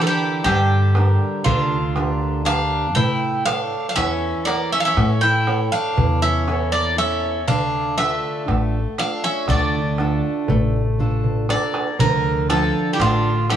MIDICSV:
0, 0, Header, 1, 6, 480
1, 0, Start_track
1, 0, Key_signature, -1, "minor"
1, 0, Tempo, 1005025
1, 1414, Time_signature, 9, 3, 24, 8
1, 6478, End_track
2, 0, Start_track
2, 0, Title_t, "Bouzouki"
2, 0, Program_c, 0, 25
2, 7, Note_on_c, 0, 69, 72
2, 31, Note_off_c, 0, 69, 0
2, 33, Note_on_c, 0, 67, 87
2, 197, Note_off_c, 0, 67, 0
2, 212, Note_on_c, 0, 67, 90
2, 689, Note_on_c, 0, 65, 77
2, 707, Note_off_c, 0, 67, 0
2, 1152, Note_off_c, 0, 65, 0
2, 1176, Note_on_c, 0, 77, 103
2, 1398, Note_off_c, 0, 77, 0
2, 1409, Note_on_c, 0, 79, 93
2, 1634, Note_off_c, 0, 79, 0
2, 1650, Note_on_c, 0, 77, 102
2, 1844, Note_off_c, 0, 77, 0
2, 1859, Note_on_c, 0, 77, 81
2, 1888, Note_off_c, 0, 77, 0
2, 1890, Note_on_c, 0, 76, 103
2, 2126, Note_on_c, 0, 74, 97
2, 2139, Note_off_c, 0, 76, 0
2, 2241, Note_off_c, 0, 74, 0
2, 2257, Note_on_c, 0, 76, 96
2, 2287, Note_off_c, 0, 76, 0
2, 2294, Note_on_c, 0, 77, 85
2, 2315, Note_off_c, 0, 77, 0
2, 2317, Note_on_c, 0, 76, 94
2, 2480, Note_off_c, 0, 76, 0
2, 2489, Note_on_c, 0, 79, 82
2, 2715, Note_off_c, 0, 79, 0
2, 2732, Note_on_c, 0, 77, 91
2, 2970, Note_off_c, 0, 77, 0
2, 2972, Note_on_c, 0, 76, 98
2, 3196, Note_off_c, 0, 76, 0
2, 3210, Note_on_c, 0, 74, 89
2, 3323, Note_off_c, 0, 74, 0
2, 3335, Note_on_c, 0, 76, 99
2, 3571, Note_off_c, 0, 76, 0
2, 3572, Note_on_c, 0, 77, 89
2, 3808, Note_off_c, 0, 77, 0
2, 3810, Note_on_c, 0, 76, 95
2, 4272, Note_off_c, 0, 76, 0
2, 4295, Note_on_c, 0, 77, 86
2, 4406, Note_off_c, 0, 77, 0
2, 4414, Note_on_c, 0, 76, 90
2, 4525, Note_off_c, 0, 76, 0
2, 4536, Note_on_c, 0, 74, 82
2, 5473, Note_off_c, 0, 74, 0
2, 5493, Note_on_c, 0, 74, 87
2, 5714, Note_off_c, 0, 74, 0
2, 5731, Note_on_c, 0, 70, 82
2, 5953, Note_off_c, 0, 70, 0
2, 5970, Note_on_c, 0, 69, 78
2, 6161, Note_off_c, 0, 69, 0
2, 6178, Note_on_c, 0, 67, 66
2, 6210, Note_off_c, 0, 67, 0
2, 6215, Note_on_c, 0, 65, 80
2, 6434, Note_off_c, 0, 65, 0
2, 6449, Note_on_c, 0, 67, 80
2, 6478, Note_off_c, 0, 67, 0
2, 6478, End_track
3, 0, Start_track
3, 0, Title_t, "Steel-string acoustic guitar"
3, 0, Program_c, 1, 25
3, 0, Note_on_c, 1, 50, 66
3, 0, Note_on_c, 1, 62, 45
3, 0, Note_on_c, 1, 67, 46
3, 0, Note_on_c, 1, 70, 52
3, 201, Note_off_c, 1, 50, 0
3, 220, Note_on_c, 1, 55, 70
3, 359, Note_off_c, 1, 62, 0
3, 361, Note_off_c, 1, 67, 0
3, 363, Note_off_c, 1, 70, 0
3, 459, Note_on_c, 1, 62, 50
3, 461, Note_on_c, 1, 67, 45
3, 464, Note_on_c, 1, 70, 57
3, 682, Note_off_c, 1, 55, 0
3, 698, Note_on_c, 1, 50, 63
3, 841, Note_off_c, 1, 62, 0
3, 842, Note_off_c, 1, 67, 0
3, 844, Note_off_c, 1, 70, 0
3, 938, Note_on_c, 1, 62, 51
3, 941, Note_on_c, 1, 67, 46
3, 941, Note_on_c, 1, 70, 54
3, 1161, Note_off_c, 1, 50, 0
3, 1165, Note_off_c, 1, 62, 0
3, 1168, Note_off_c, 1, 67, 0
3, 1171, Note_off_c, 1, 70, 0
3, 1171, Note_on_c, 1, 62, 50
3, 1174, Note_on_c, 1, 67, 49
3, 1177, Note_on_c, 1, 70, 53
3, 1364, Note_off_c, 1, 62, 0
3, 1366, Note_off_c, 1, 67, 0
3, 1368, Note_off_c, 1, 70, 0
3, 1410, Note_on_c, 1, 57, 67
3, 1651, Note_on_c, 1, 69, 48
3, 1652, Note_on_c, 1, 73, 58
3, 1878, Note_off_c, 1, 57, 0
3, 1891, Note_on_c, 1, 52, 69
3, 2036, Note_off_c, 1, 69, 0
3, 2037, Note_off_c, 1, 73, 0
3, 2130, Note_on_c, 1, 64, 51
3, 2132, Note_on_c, 1, 69, 42
3, 2132, Note_on_c, 1, 73, 55
3, 2358, Note_off_c, 1, 52, 0
3, 2374, Note_on_c, 1, 57, 66
3, 2516, Note_off_c, 1, 64, 0
3, 2516, Note_off_c, 1, 69, 0
3, 2517, Note_off_c, 1, 73, 0
3, 2613, Note_on_c, 1, 69, 48
3, 2616, Note_on_c, 1, 73, 60
3, 2840, Note_off_c, 1, 57, 0
3, 2855, Note_on_c, 1, 52, 71
3, 2997, Note_off_c, 1, 69, 0
3, 2999, Note_off_c, 1, 73, 0
3, 3096, Note_on_c, 1, 64, 49
3, 3099, Note_on_c, 1, 73, 54
3, 3100, Note_on_c, 1, 69, 48
3, 3320, Note_off_c, 1, 52, 0
3, 3329, Note_off_c, 1, 64, 0
3, 3331, Note_off_c, 1, 69, 0
3, 3334, Note_off_c, 1, 73, 0
3, 3335, Note_on_c, 1, 64, 49
3, 3337, Note_on_c, 1, 69, 48
3, 3339, Note_on_c, 1, 73, 58
3, 3526, Note_off_c, 1, 64, 0
3, 3528, Note_off_c, 1, 69, 0
3, 3529, Note_off_c, 1, 73, 0
3, 3577, Note_on_c, 1, 50, 71
3, 3809, Note_on_c, 1, 62, 50
3, 3812, Note_on_c, 1, 65, 44
3, 3814, Note_on_c, 1, 69, 59
3, 4041, Note_off_c, 1, 50, 0
3, 4052, Note_on_c, 1, 57, 62
3, 4194, Note_off_c, 1, 62, 0
3, 4196, Note_off_c, 1, 65, 0
3, 4197, Note_off_c, 1, 69, 0
3, 4292, Note_on_c, 1, 62, 46
3, 4294, Note_on_c, 1, 65, 43
3, 4298, Note_on_c, 1, 69, 53
3, 4517, Note_off_c, 1, 57, 0
3, 4534, Note_on_c, 1, 50, 64
3, 4676, Note_off_c, 1, 62, 0
3, 4677, Note_off_c, 1, 65, 0
3, 4679, Note_off_c, 1, 69, 0
3, 4773, Note_on_c, 1, 62, 51
3, 4776, Note_on_c, 1, 65, 46
3, 4778, Note_on_c, 1, 69, 60
3, 4998, Note_off_c, 1, 50, 0
3, 5014, Note_on_c, 1, 57, 69
3, 5156, Note_off_c, 1, 62, 0
3, 5157, Note_off_c, 1, 65, 0
3, 5159, Note_off_c, 1, 69, 0
3, 5251, Note_on_c, 1, 62, 46
3, 5254, Note_on_c, 1, 65, 44
3, 5255, Note_on_c, 1, 69, 55
3, 5477, Note_off_c, 1, 57, 0
3, 5484, Note_off_c, 1, 62, 0
3, 5485, Note_off_c, 1, 65, 0
3, 5488, Note_off_c, 1, 69, 0
3, 5489, Note_on_c, 1, 62, 47
3, 5492, Note_on_c, 1, 65, 46
3, 5494, Note_on_c, 1, 69, 59
3, 5681, Note_off_c, 1, 62, 0
3, 5682, Note_off_c, 1, 65, 0
3, 5684, Note_off_c, 1, 69, 0
3, 5729, Note_on_c, 1, 50, 66
3, 5969, Note_on_c, 1, 62, 52
3, 5973, Note_on_c, 1, 65, 48
3, 5973, Note_on_c, 1, 69, 59
3, 6193, Note_off_c, 1, 50, 0
3, 6209, Note_on_c, 1, 57, 70
3, 6352, Note_off_c, 1, 62, 0
3, 6353, Note_off_c, 1, 65, 0
3, 6354, Note_off_c, 1, 69, 0
3, 6444, Note_on_c, 1, 62, 48
3, 6445, Note_on_c, 1, 77, 46
3, 6447, Note_on_c, 1, 69, 50
3, 6478, Note_off_c, 1, 57, 0
3, 6478, Note_off_c, 1, 62, 0
3, 6478, Note_off_c, 1, 69, 0
3, 6478, Note_off_c, 1, 77, 0
3, 6478, End_track
4, 0, Start_track
4, 0, Title_t, "Bouzouki"
4, 0, Program_c, 2, 25
4, 11, Note_on_c, 2, 53, 58
4, 40, Note_off_c, 2, 53, 0
4, 41, Note_on_c, 2, 52, 70
4, 201, Note_off_c, 2, 52, 0
4, 218, Note_on_c, 2, 50, 69
4, 677, Note_off_c, 2, 50, 0
4, 696, Note_on_c, 2, 50, 72
4, 1156, Note_off_c, 2, 50, 0
4, 1171, Note_on_c, 2, 62, 77
4, 1396, Note_off_c, 2, 62, 0
4, 1416, Note_on_c, 2, 64, 81
4, 1638, Note_off_c, 2, 64, 0
4, 1653, Note_on_c, 2, 62, 70
4, 1845, Note_off_c, 2, 62, 0
4, 1862, Note_on_c, 2, 62, 54
4, 1893, Note_off_c, 2, 62, 0
4, 1893, Note_on_c, 2, 61, 83
4, 2116, Note_off_c, 2, 61, 0
4, 2135, Note_on_c, 2, 58, 78
4, 2246, Note_off_c, 2, 58, 0
4, 2257, Note_on_c, 2, 61, 81
4, 2287, Note_off_c, 2, 61, 0
4, 2295, Note_on_c, 2, 62, 68
4, 2323, Note_off_c, 2, 62, 0
4, 2325, Note_on_c, 2, 61, 81
4, 2484, Note_off_c, 2, 61, 0
4, 2498, Note_on_c, 2, 64, 82
4, 2719, Note_off_c, 2, 64, 0
4, 2736, Note_on_c, 2, 62, 78
4, 2959, Note_off_c, 2, 62, 0
4, 2977, Note_on_c, 2, 61, 75
4, 3199, Note_off_c, 2, 61, 0
4, 3214, Note_on_c, 2, 58, 74
4, 3326, Note_off_c, 2, 58, 0
4, 3334, Note_on_c, 2, 61, 75
4, 3557, Note_off_c, 2, 61, 0
4, 3570, Note_on_c, 2, 62, 84
4, 3795, Note_off_c, 2, 62, 0
4, 3808, Note_on_c, 2, 57, 70
4, 4271, Note_off_c, 2, 57, 0
4, 4291, Note_on_c, 2, 62, 74
4, 4403, Note_off_c, 2, 62, 0
4, 4412, Note_on_c, 2, 61, 78
4, 4524, Note_off_c, 2, 61, 0
4, 4531, Note_on_c, 2, 57, 65
4, 5470, Note_off_c, 2, 57, 0
4, 5493, Note_on_c, 2, 58, 69
4, 5714, Note_off_c, 2, 58, 0
4, 5733, Note_on_c, 2, 53, 68
4, 5954, Note_off_c, 2, 53, 0
4, 5968, Note_on_c, 2, 53, 67
4, 6160, Note_off_c, 2, 53, 0
4, 6175, Note_on_c, 2, 52, 50
4, 6205, Note_off_c, 2, 52, 0
4, 6207, Note_on_c, 2, 50, 70
4, 6430, Note_off_c, 2, 50, 0
4, 6454, Note_on_c, 2, 52, 65
4, 6478, Note_off_c, 2, 52, 0
4, 6478, End_track
5, 0, Start_track
5, 0, Title_t, "Upright bass"
5, 0, Program_c, 3, 32
5, 214, Note_on_c, 3, 43, 96
5, 550, Note_off_c, 3, 43, 0
5, 696, Note_on_c, 3, 38, 90
5, 1414, Note_off_c, 3, 38, 0
5, 1414, Note_on_c, 3, 45, 90
5, 1750, Note_off_c, 3, 45, 0
5, 1895, Note_on_c, 3, 40, 94
5, 2062, Note_off_c, 3, 40, 0
5, 2374, Note_on_c, 3, 45, 95
5, 2710, Note_off_c, 3, 45, 0
5, 2854, Note_on_c, 3, 40, 95
5, 3573, Note_off_c, 3, 40, 0
5, 3573, Note_on_c, 3, 38, 91
5, 3909, Note_off_c, 3, 38, 0
5, 4052, Note_on_c, 3, 33, 83
5, 4220, Note_off_c, 3, 33, 0
5, 4531, Note_on_c, 3, 38, 101
5, 4867, Note_off_c, 3, 38, 0
5, 5012, Note_on_c, 3, 33, 98
5, 5515, Note_off_c, 3, 33, 0
5, 5730, Note_on_c, 3, 38, 88
5, 6065, Note_off_c, 3, 38, 0
5, 6206, Note_on_c, 3, 33, 102
5, 6478, Note_off_c, 3, 33, 0
5, 6478, End_track
6, 0, Start_track
6, 0, Title_t, "Darbuka"
6, 218, Note_on_c, 9, 63, 73
6, 265, Note_off_c, 9, 63, 0
6, 336, Note_on_c, 9, 63, 28
6, 384, Note_off_c, 9, 63, 0
6, 454, Note_on_c, 9, 63, 68
6, 501, Note_off_c, 9, 63, 0
6, 695, Note_on_c, 9, 64, 95
6, 743, Note_off_c, 9, 64, 0
6, 935, Note_on_c, 9, 63, 74
6, 982, Note_off_c, 9, 63, 0
6, 1058, Note_on_c, 9, 63, 28
6, 1106, Note_off_c, 9, 63, 0
6, 1176, Note_on_c, 9, 63, 80
6, 1224, Note_off_c, 9, 63, 0
6, 1296, Note_on_c, 9, 63, 27
6, 1344, Note_off_c, 9, 63, 0
6, 1415, Note_on_c, 9, 64, 97
6, 1463, Note_off_c, 9, 64, 0
6, 1657, Note_on_c, 9, 63, 76
6, 1705, Note_off_c, 9, 63, 0
6, 1897, Note_on_c, 9, 63, 76
6, 1945, Note_off_c, 9, 63, 0
6, 2137, Note_on_c, 9, 63, 69
6, 2184, Note_off_c, 9, 63, 0
6, 2374, Note_on_c, 9, 63, 75
6, 2422, Note_off_c, 9, 63, 0
6, 2495, Note_on_c, 9, 63, 26
6, 2543, Note_off_c, 9, 63, 0
6, 2613, Note_on_c, 9, 63, 66
6, 2661, Note_off_c, 9, 63, 0
6, 2854, Note_on_c, 9, 64, 91
6, 2901, Note_off_c, 9, 64, 0
6, 3094, Note_on_c, 9, 63, 63
6, 3142, Note_off_c, 9, 63, 0
6, 3214, Note_on_c, 9, 63, 24
6, 3262, Note_off_c, 9, 63, 0
6, 3455, Note_on_c, 9, 63, 26
6, 3503, Note_off_c, 9, 63, 0
6, 3572, Note_on_c, 9, 64, 77
6, 3619, Note_off_c, 9, 64, 0
6, 3694, Note_on_c, 9, 63, 25
6, 3741, Note_off_c, 9, 63, 0
6, 3813, Note_on_c, 9, 63, 67
6, 3861, Note_off_c, 9, 63, 0
6, 4051, Note_on_c, 9, 63, 67
6, 4099, Note_off_c, 9, 63, 0
6, 4290, Note_on_c, 9, 63, 57
6, 4338, Note_off_c, 9, 63, 0
6, 4409, Note_on_c, 9, 63, 25
6, 4457, Note_off_c, 9, 63, 0
6, 4527, Note_on_c, 9, 63, 68
6, 4527, Note_on_c, 9, 64, 63
6, 4574, Note_off_c, 9, 63, 0
6, 4574, Note_off_c, 9, 64, 0
6, 4649, Note_on_c, 9, 63, 23
6, 4696, Note_off_c, 9, 63, 0
6, 4768, Note_on_c, 9, 63, 61
6, 4815, Note_off_c, 9, 63, 0
6, 4889, Note_on_c, 9, 63, 26
6, 4937, Note_off_c, 9, 63, 0
6, 5007, Note_on_c, 9, 64, 92
6, 5055, Note_off_c, 9, 64, 0
6, 5128, Note_on_c, 9, 63, 26
6, 5176, Note_off_c, 9, 63, 0
6, 5248, Note_on_c, 9, 64, 47
6, 5296, Note_off_c, 9, 64, 0
6, 5368, Note_on_c, 9, 64, 53
6, 5416, Note_off_c, 9, 64, 0
6, 5488, Note_on_c, 9, 63, 71
6, 5536, Note_off_c, 9, 63, 0
6, 5607, Note_on_c, 9, 63, 75
6, 5655, Note_off_c, 9, 63, 0
6, 5728, Note_on_c, 9, 64, 86
6, 5775, Note_off_c, 9, 64, 0
6, 5968, Note_on_c, 9, 63, 67
6, 6016, Note_off_c, 9, 63, 0
6, 6209, Note_on_c, 9, 63, 73
6, 6257, Note_off_c, 9, 63, 0
6, 6446, Note_on_c, 9, 63, 65
6, 6478, Note_off_c, 9, 63, 0
6, 6478, End_track
0, 0, End_of_file